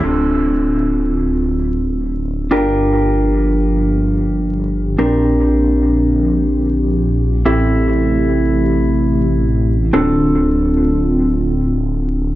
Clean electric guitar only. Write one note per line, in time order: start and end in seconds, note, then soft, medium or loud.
0.03 2.49 C4 medium
0.03 2.48 D4 medium
0.03 2.49 F4 medium
0.03 2.49 A4 medium
2.51 4.96 D4 medium
2.51 4.96 F4 medium
2.51 4.96 G4 medium
2.51 4.96 A#4 medium
4.99 7.43 C4 medium
4.99 7.43 D4 medium
4.99 7.43 G4 medium
4.99 7.43 A#4 medium
7.45 9.91 C4 medium
7.45 9.91 E4 medium
7.45 9.91 G4 medium
7.45 9.91 A4 medium
9.93 12.35 C4 medium
9.93 12.35 D4 medium
9.93 12.35 F4 medium
9.93 12.35 A4 medium